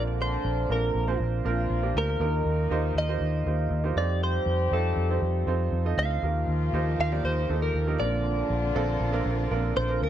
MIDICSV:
0, 0, Header, 1, 6, 480
1, 0, Start_track
1, 0, Key_signature, -2, "major"
1, 0, Tempo, 503778
1, 189, Time_signature, 4, 2, 24, 8
1, 9618, End_track
2, 0, Start_track
2, 0, Title_t, "Clean electric guitar"
2, 0, Program_c, 0, 27
2, 206, Note_on_c, 0, 72, 89
2, 683, Note_off_c, 0, 72, 0
2, 687, Note_on_c, 0, 70, 70
2, 1123, Note_off_c, 0, 70, 0
2, 1885, Note_on_c, 0, 70, 83
2, 2795, Note_off_c, 0, 70, 0
2, 2842, Note_on_c, 0, 75, 107
2, 3785, Note_off_c, 0, 75, 0
2, 3789, Note_on_c, 0, 74, 88
2, 4008, Note_off_c, 0, 74, 0
2, 4035, Note_on_c, 0, 72, 105
2, 4511, Note_on_c, 0, 69, 66
2, 4522, Note_off_c, 0, 72, 0
2, 4953, Note_off_c, 0, 69, 0
2, 5705, Note_on_c, 0, 77, 100
2, 6664, Note_off_c, 0, 77, 0
2, 6675, Note_on_c, 0, 77, 103
2, 6790, Note_off_c, 0, 77, 0
2, 6790, Note_on_c, 0, 74, 93
2, 6907, Note_on_c, 0, 72, 104
2, 6910, Note_off_c, 0, 74, 0
2, 7260, Note_off_c, 0, 72, 0
2, 7264, Note_on_c, 0, 70, 83
2, 7619, Note_on_c, 0, 74, 101
2, 7634, Note_off_c, 0, 70, 0
2, 9302, Note_off_c, 0, 74, 0
2, 9306, Note_on_c, 0, 72, 99
2, 9530, Note_off_c, 0, 72, 0
2, 9561, Note_on_c, 0, 70, 94
2, 9618, Note_off_c, 0, 70, 0
2, 9618, End_track
3, 0, Start_track
3, 0, Title_t, "Grand piano"
3, 0, Program_c, 1, 0
3, 0, Note_on_c, 1, 46, 63
3, 0, Note_on_c, 1, 58, 76
3, 0, Note_on_c, 1, 60, 69
3, 0, Note_on_c, 1, 62, 75
3, 0, Note_on_c, 1, 65, 68
3, 0, Note_on_c, 1, 70, 83
3, 149, Control_c, 1, 64, 127
3, 631, Note_off_c, 1, 46, 0
3, 631, Note_off_c, 1, 58, 0
3, 632, Note_off_c, 1, 60, 0
3, 633, Note_off_c, 1, 62, 0
3, 634, Note_off_c, 1, 65, 0
3, 636, Note_off_c, 1, 70, 0
3, 662, Note_on_c, 1, 58, 77
3, 666, Note_on_c, 1, 60, 71
3, 669, Note_on_c, 1, 62, 72
3, 670, Note_on_c, 1, 65, 68
3, 676, Note_on_c, 1, 70, 89
3, 1006, Note_off_c, 1, 58, 0
3, 1008, Note_off_c, 1, 60, 0
3, 1009, Note_off_c, 1, 62, 0
3, 1010, Note_off_c, 1, 65, 0
3, 1013, Note_off_c, 1, 70, 0
3, 1023, Note_on_c, 1, 58, 90
3, 1025, Note_on_c, 1, 60, 73
3, 1027, Note_on_c, 1, 62, 71
3, 1028, Note_on_c, 1, 72, 95
3, 1029, Note_on_c, 1, 65, 71
3, 1365, Note_off_c, 1, 60, 0
3, 1366, Note_off_c, 1, 58, 0
3, 1368, Note_off_c, 1, 62, 0
3, 1368, Note_off_c, 1, 72, 0
3, 1369, Note_off_c, 1, 65, 0
3, 1379, Note_on_c, 1, 60, 77
3, 1381, Note_on_c, 1, 58, 83
3, 1383, Note_on_c, 1, 62, 82
3, 1384, Note_on_c, 1, 65, 81
3, 1388, Note_on_c, 1, 70, 104
3, 1723, Note_off_c, 1, 58, 0
3, 1724, Note_off_c, 1, 60, 0
3, 1725, Note_off_c, 1, 62, 0
3, 1726, Note_off_c, 1, 65, 0
3, 1728, Note_off_c, 1, 70, 0
3, 1738, Note_on_c, 1, 58, 84
3, 1738, Note_on_c, 1, 60, 75
3, 1742, Note_on_c, 1, 62, 77
3, 1743, Note_on_c, 1, 65, 77
3, 1746, Note_on_c, 1, 67, 90
3, 2082, Note_off_c, 1, 58, 0
3, 2083, Note_off_c, 1, 60, 0
3, 2084, Note_off_c, 1, 65, 0
3, 2085, Note_off_c, 1, 62, 0
3, 2087, Note_off_c, 1, 67, 0
3, 2096, Note_on_c, 1, 58, 73
3, 2098, Note_on_c, 1, 63, 73
3, 2098, Note_on_c, 1, 65, 70
3, 2101, Note_on_c, 1, 51, 68
3, 2103, Note_on_c, 1, 67, 70
3, 2106, Note_on_c, 1, 70, 94
3, 2116, Control_c, 1, 64, 0
3, 2279, Control_c, 1, 64, 127
3, 2555, Note_off_c, 1, 58, 0
3, 2556, Note_off_c, 1, 63, 0
3, 2556, Note_off_c, 1, 65, 0
3, 2558, Note_off_c, 1, 67, 0
3, 2560, Note_off_c, 1, 70, 0
3, 2579, Note_on_c, 1, 58, 90
3, 2584, Note_on_c, 1, 63, 83
3, 2584, Note_on_c, 1, 65, 89
3, 2584, Note_on_c, 1, 67, 94
3, 2589, Note_on_c, 1, 72, 103
3, 2784, Note_off_c, 1, 51, 0
3, 2923, Note_off_c, 1, 58, 0
3, 2925, Note_off_c, 1, 63, 0
3, 2925, Note_off_c, 1, 65, 0
3, 2925, Note_off_c, 1, 67, 0
3, 2928, Note_off_c, 1, 72, 0
3, 2942, Note_on_c, 1, 58, 81
3, 2944, Note_on_c, 1, 63, 73
3, 2944, Note_on_c, 1, 65, 77
3, 2946, Note_on_c, 1, 67, 75
3, 2946, Note_on_c, 1, 72, 98
3, 3284, Note_off_c, 1, 58, 0
3, 3285, Note_off_c, 1, 63, 0
3, 3285, Note_off_c, 1, 65, 0
3, 3286, Note_off_c, 1, 67, 0
3, 3286, Note_off_c, 1, 72, 0
3, 3303, Note_on_c, 1, 58, 84
3, 3303, Note_on_c, 1, 63, 70
3, 3307, Note_on_c, 1, 65, 66
3, 3307, Note_on_c, 1, 67, 69
3, 3312, Note_on_c, 1, 72, 79
3, 3642, Note_off_c, 1, 58, 0
3, 3644, Note_off_c, 1, 63, 0
3, 3646, Note_off_c, 1, 65, 0
3, 3646, Note_off_c, 1, 67, 0
3, 3649, Note_off_c, 1, 72, 0
3, 3656, Note_on_c, 1, 58, 83
3, 3658, Note_on_c, 1, 63, 77
3, 3660, Note_on_c, 1, 65, 77
3, 3664, Note_on_c, 1, 67, 73
3, 3668, Note_on_c, 1, 72, 85
3, 3765, Note_off_c, 1, 63, 0
3, 3766, Note_off_c, 1, 65, 0
3, 3771, Note_off_c, 1, 72, 0
3, 3778, Note_on_c, 1, 60, 84
3, 3779, Note_off_c, 1, 58, 0
3, 3779, Note_on_c, 1, 63, 70
3, 3780, Note_on_c, 1, 65, 66
3, 3783, Note_off_c, 1, 67, 0
3, 3786, Note_on_c, 1, 72, 77
3, 3788, Note_on_c, 1, 69, 67
3, 3793, Control_c, 1, 64, 0
3, 3946, Control_c, 1, 64, 127
3, 4463, Note_off_c, 1, 60, 0
3, 4464, Note_off_c, 1, 63, 0
3, 4464, Note_off_c, 1, 65, 0
3, 4467, Note_off_c, 1, 72, 0
3, 4468, Note_off_c, 1, 69, 0
3, 4498, Note_on_c, 1, 60, 76
3, 4504, Note_on_c, 1, 63, 69
3, 4504, Note_on_c, 1, 65, 75
3, 4505, Note_on_c, 1, 69, 69
3, 4505, Note_on_c, 1, 72, 77
3, 4842, Note_off_c, 1, 60, 0
3, 4844, Note_off_c, 1, 65, 0
3, 4845, Note_off_c, 1, 63, 0
3, 4845, Note_off_c, 1, 69, 0
3, 4845, Note_off_c, 1, 72, 0
3, 4857, Note_on_c, 1, 60, 81
3, 4860, Note_on_c, 1, 63, 69
3, 4862, Note_on_c, 1, 72, 85
3, 4864, Note_on_c, 1, 65, 75
3, 4864, Note_on_c, 1, 69, 80
3, 5197, Note_off_c, 1, 60, 0
3, 5200, Note_off_c, 1, 63, 0
3, 5202, Note_off_c, 1, 65, 0
3, 5204, Note_off_c, 1, 72, 0
3, 5205, Note_off_c, 1, 69, 0
3, 5212, Note_on_c, 1, 60, 93
3, 5214, Note_on_c, 1, 63, 77
3, 5217, Note_on_c, 1, 65, 87
3, 5222, Note_on_c, 1, 72, 94
3, 5224, Note_on_c, 1, 69, 74
3, 5558, Note_off_c, 1, 60, 0
3, 5560, Note_off_c, 1, 63, 0
3, 5561, Note_off_c, 1, 65, 0
3, 5564, Note_off_c, 1, 69, 0
3, 5564, Note_off_c, 1, 72, 0
3, 5575, Note_on_c, 1, 60, 75
3, 5580, Note_on_c, 1, 63, 73
3, 5581, Note_on_c, 1, 65, 73
3, 5584, Note_on_c, 1, 69, 80
3, 5585, Note_on_c, 1, 75, 92
3, 5920, Note_off_c, 1, 60, 0
3, 5923, Note_off_c, 1, 63, 0
3, 5923, Note_off_c, 1, 65, 0
3, 5924, Note_off_c, 1, 69, 0
3, 5925, Note_off_c, 1, 75, 0
3, 5935, Note_on_c, 1, 58, 74
3, 5938, Note_on_c, 1, 65, 66
3, 5939, Note_on_c, 1, 63, 66
3, 5942, Note_on_c, 1, 51, 65
3, 5944, Note_on_c, 1, 67, 70
3, 5945, Note_on_c, 1, 70, 74
3, 5952, Control_c, 1, 64, 0
3, 6124, Control_c, 1, 64, 127
3, 6394, Note_off_c, 1, 58, 0
3, 6396, Note_off_c, 1, 65, 0
3, 6397, Note_off_c, 1, 63, 0
3, 6399, Note_off_c, 1, 67, 0
3, 6399, Note_off_c, 1, 70, 0
3, 6420, Note_on_c, 1, 58, 82
3, 6420, Note_on_c, 1, 63, 81
3, 6424, Note_on_c, 1, 65, 80
3, 6425, Note_on_c, 1, 67, 85
3, 6426, Note_on_c, 1, 72, 95
3, 6624, Note_off_c, 1, 51, 0
3, 6763, Note_off_c, 1, 58, 0
3, 6763, Note_off_c, 1, 63, 0
3, 6765, Note_off_c, 1, 65, 0
3, 6765, Note_off_c, 1, 67, 0
3, 6766, Note_off_c, 1, 72, 0
3, 6785, Note_on_c, 1, 58, 89
3, 6785, Note_on_c, 1, 65, 71
3, 6787, Note_on_c, 1, 63, 71
3, 6788, Note_on_c, 1, 67, 72
3, 6789, Note_on_c, 1, 70, 82
3, 7126, Note_off_c, 1, 58, 0
3, 7126, Note_off_c, 1, 65, 0
3, 7127, Note_off_c, 1, 63, 0
3, 7127, Note_off_c, 1, 67, 0
3, 7128, Note_off_c, 1, 70, 0
3, 7141, Note_on_c, 1, 58, 73
3, 7143, Note_on_c, 1, 63, 68
3, 7144, Note_on_c, 1, 65, 72
3, 7146, Note_on_c, 1, 67, 70
3, 7148, Note_on_c, 1, 69, 79
3, 7484, Note_off_c, 1, 58, 0
3, 7485, Note_off_c, 1, 63, 0
3, 7486, Note_off_c, 1, 65, 0
3, 7487, Note_off_c, 1, 67, 0
3, 7487, Note_off_c, 1, 69, 0
3, 7502, Note_on_c, 1, 58, 81
3, 7505, Note_on_c, 1, 63, 77
3, 7506, Note_on_c, 1, 67, 74
3, 7508, Note_on_c, 1, 65, 80
3, 7510, Note_on_c, 1, 70, 91
3, 7608, Note_off_c, 1, 58, 0
3, 7610, Note_off_c, 1, 65, 0
3, 7617, Note_off_c, 1, 70, 0
3, 7621, Note_on_c, 1, 60, 69
3, 7622, Note_on_c, 1, 58, 78
3, 7624, Note_off_c, 1, 63, 0
3, 7625, Note_off_c, 1, 67, 0
3, 7625, Note_on_c, 1, 62, 69
3, 7625, Note_on_c, 1, 65, 68
3, 7627, Note_on_c, 1, 46, 64
3, 7631, Note_on_c, 1, 70, 80
3, 7635, Control_c, 1, 64, 0
3, 7777, Control_c, 1, 64, 127
3, 8307, Note_off_c, 1, 58, 0
3, 8307, Note_off_c, 1, 60, 0
3, 8308, Note_off_c, 1, 46, 0
3, 8309, Note_off_c, 1, 62, 0
3, 8309, Note_off_c, 1, 65, 0
3, 8312, Note_off_c, 1, 70, 0
3, 8335, Note_on_c, 1, 58, 94
3, 8338, Note_on_c, 1, 62, 86
3, 8340, Note_on_c, 1, 60, 95
3, 8341, Note_on_c, 1, 65, 89
3, 8345, Note_on_c, 1, 69, 108
3, 8681, Note_off_c, 1, 58, 0
3, 8681, Note_off_c, 1, 60, 0
3, 8683, Note_off_c, 1, 62, 0
3, 8685, Note_off_c, 1, 65, 0
3, 8687, Note_off_c, 1, 69, 0
3, 8695, Note_on_c, 1, 58, 96
3, 8695, Note_on_c, 1, 60, 93
3, 8700, Note_on_c, 1, 62, 89
3, 8703, Note_on_c, 1, 65, 100
3, 8705, Note_on_c, 1, 70, 101
3, 9042, Note_off_c, 1, 60, 0
3, 9043, Note_off_c, 1, 58, 0
3, 9045, Note_off_c, 1, 62, 0
3, 9046, Note_off_c, 1, 65, 0
3, 9048, Note_off_c, 1, 70, 0
3, 9059, Note_on_c, 1, 58, 88
3, 9059, Note_on_c, 1, 60, 79
3, 9066, Note_on_c, 1, 62, 88
3, 9066, Note_on_c, 1, 65, 78
3, 9067, Note_on_c, 1, 70, 103
3, 9405, Note_off_c, 1, 58, 0
3, 9405, Note_off_c, 1, 60, 0
3, 9408, Note_off_c, 1, 62, 0
3, 9409, Note_off_c, 1, 65, 0
3, 9409, Note_off_c, 1, 70, 0
3, 9424, Note_on_c, 1, 58, 87
3, 9426, Note_on_c, 1, 62, 78
3, 9429, Note_on_c, 1, 60, 77
3, 9430, Note_on_c, 1, 65, 79
3, 9433, Note_on_c, 1, 70, 95
3, 9618, Note_off_c, 1, 58, 0
3, 9618, Note_off_c, 1, 60, 0
3, 9618, Note_off_c, 1, 62, 0
3, 9618, Note_off_c, 1, 65, 0
3, 9618, Note_off_c, 1, 70, 0
3, 9618, End_track
4, 0, Start_track
4, 0, Title_t, "String section"
4, 0, Program_c, 2, 48
4, 5949, Note_on_c, 2, 63, 75
4, 5956, Note_on_c, 2, 58, 66
4, 5958, Note_on_c, 2, 53, 72
4, 5960, Note_on_c, 2, 67, 86
4, 7610, Note_off_c, 2, 63, 0
4, 7614, Note_off_c, 2, 58, 0
4, 7615, Note_off_c, 2, 53, 0
4, 7616, Note_off_c, 2, 67, 0
4, 7628, Note_on_c, 2, 50, 92
4, 7630, Note_on_c, 2, 60, 79
4, 7633, Note_on_c, 2, 65, 96
4, 7636, Note_on_c, 2, 58, 74
4, 9618, Note_off_c, 2, 50, 0
4, 9618, Note_off_c, 2, 58, 0
4, 9618, Note_off_c, 2, 60, 0
4, 9618, Note_off_c, 2, 65, 0
4, 9618, End_track
5, 0, Start_track
5, 0, Title_t, "French horn section"
5, 0, Program_c, 3, 60
5, 0, Note_on_c, 3, 50, 81
5, 0, Note_on_c, 3, 62, 96
5, 1126, Note_off_c, 3, 62, 0
5, 1127, Note_off_c, 3, 50, 0
5, 1384, Note_on_c, 3, 53, 90
5, 1390, Note_on_c, 3, 65, 98
5, 1854, Note_off_c, 3, 53, 0
5, 1857, Note_off_c, 3, 65, 0
5, 2109, Note_on_c, 3, 63, 97
5, 2110, Note_on_c, 3, 51, 83
5, 3516, Note_off_c, 3, 51, 0
5, 3516, Note_off_c, 3, 63, 0
5, 3786, Note_on_c, 3, 67, 103
5, 3787, Note_on_c, 3, 55, 88
5, 5665, Note_off_c, 3, 67, 0
5, 5666, Note_off_c, 3, 55, 0
5, 5945, Note_on_c, 3, 53, 77
5, 5946, Note_on_c, 3, 65, 94
5, 7356, Note_off_c, 3, 53, 0
5, 7356, Note_off_c, 3, 65, 0
5, 7626, Note_on_c, 3, 62, 101
5, 7627, Note_on_c, 3, 50, 90
5, 9510, Note_off_c, 3, 50, 0
5, 9510, Note_off_c, 3, 62, 0
5, 9618, End_track
6, 0, Start_track
6, 0, Title_t, "Fingered electric bass"
6, 0, Program_c, 4, 33
6, 0, Note_on_c, 4, 34, 102
6, 341, Note_off_c, 4, 34, 0
6, 425, Note_on_c, 4, 34, 108
6, 623, Note_off_c, 4, 34, 0
6, 664, Note_on_c, 4, 34, 112
6, 862, Note_off_c, 4, 34, 0
6, 902, Note_on_c, 4, 34, 102
6, 1100, Note_off_c, 4, 34, 0
6, 1144, Note_on_c, 4, 34, 113
6, 1341, Note_off_c, 4, 34, 0
6, 1385, Note_on_c, 4, 34, 101
6, 1582, Note_off_c, 4, 34, 0
6, 1621, Note_on_c, 4, 34, 95
6, 1819, Note_off_c, 4, 34, 0
6, 1858, Note_on_c, 4, 38, 96
6, 2057, Note_off_c, 4, 38, 0
6, 2096, Note_on_c, 4, 39, 115
6, 2296, Note_off_c, 4, 39, 0
6, 2336, Note_on_c, 4, 39, 106
6, 2536, Note_off_c, 4, 39, 0
6, 2576, Note_on_c, 4, 39, 97
6, 2775, Note_off_c, 4, 39, 0
6, 2812, Note_on_c, 4, 39, 115
6, 3013, Note_off_c, 4, 39, 0
6, 3055, Note_on_c, 4, 39, 114
6, 3255, Note_off_c, 4, 39, 0
6, 3299, Note_on_c, 4, 39, 98
6, 3497, Note_off_c, 4, 39, 0
6, 3530, Note_on_c, 4, 39, 115
6, 3732, Note_off_c, 4, 39, 0
6, 3772, Note_on_c, 4, 41, 99
6, 4169, Note_off_c, 4, 41, 0
6, 4250, Note_on_c, 4, 41, 94
6, 4451, Note_off_c, 4, 41, 0
6, 4494, Note_on_c, 4, 41, 104
6, 4693, Note_off_c, 4, 41, 0
6, 4730, Note_on_c, 4, 41, 99
6, 4932, Note_off_c, 4, 41, 0
6, 4973, Note_on_c, 4, 41, 104
6, 5173, Note_off_c, 4, 41, 0
6, 5211, Note_on_c, 4, 41, 100
6, 5412, Note_off_c, 4, 41, 0
6, 5450, Note_on_c, 4, 41, 110
6, 5652, Note_off_c, 4, 41, 0
6, 5693, Note_on_c, 4, 38, 95
6, 5893, Note_off_c, 4, 38, 0
6, 5932, Note_on_c, 4, 39, 99
6, 6133, Note_off_c, 4, 39, 0
6, 6171, Note_on_c, 4, 39, 101
6, 6372, Note_off_c, 4, 39, 0
6, 6414, Note_on_c, 4, 39, 116
6, 6614, Note_off_c, 4, 39, 0
6, 6661, Note_on_c, 4, 39, 101
6, 6858, Note_off_c, 4, 39, 0
6, 6900, Note_on_c, 4, 39, 113
6, 7098, Note_off_c, 4, 39, 0
6, 7141, Note_on_c, 4, 39, 104
6, 7338, Note_off_c, 4, 39, 0
6, 7378, Note_on_c, 4, 39, 101
6, 7577, Note_off_c, 4, 39, 0
6, 7622, Note_on_c, 4, 34, 102
6, 8017, Note_off_c, 4, 34, 0
6, 8100, Note_on_c, 4, 34, 105
6, 8299, Note_off_c, 4, 34, 0
6, 8345, Note_on_c, 4, 34, 116
6, 8542, Note_off_c, 4, 34, 0
6, 8580, Note_on_c, 4, 34, 107
6, 8779, Note_off_c, 4, 34, 0
6, 8821, Note_on_c, 4, 34, 101
6, 9020, Note_off_c, 4, 34, 0
6, 9064, Note_on_c, 4, 34, 101
6, 9262, Note_off_c, 4, 34, 0
6, 9305, Note_on_c, 4, 34, 105
6, 9503, Note_off_c, 4, 34, 0
6, 9541, Note_on_c, 4, 38, 95
6, 9618, Note_off_c, 4, 38, 0
6, 9618, End_track
0, 0, End_of_file